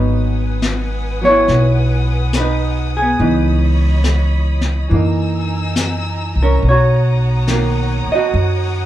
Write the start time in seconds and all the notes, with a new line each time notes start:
Already playing: G#1 F#3 B3 D#4 B4 F#5 G#5 D#6
0.62 snare, hi-hat pedal
1.22 F#3 B3 C#5
1.29 E4
1.48 B1, brush sweep, snare
2.33 B4, snare, hi-hat pedal
2.40 D#4
2.97 G#4
3.02 B3
3.17 C#2 E3 B3 D#4 C#5 D#5 B5, brush sweep
4.04 snare, hi-hat pedal
4.61 snare
4.89 F#2 E3 A#3 D#4 G#5 A#5 E6, brush sweep
4.95 D#4
5.76 snare, hi-hat pedal
6.36 C2
6.43 C#4 A#4
6.61 B1 C#5 F#5 D#6, brush sweep
6.69 F#4 C#5
7.47 D#3 A#3, snare, hi-hat pedal
8.07 muted upright bass stroke
8.12 F#4 D#5
8.33 F#2, brush sweep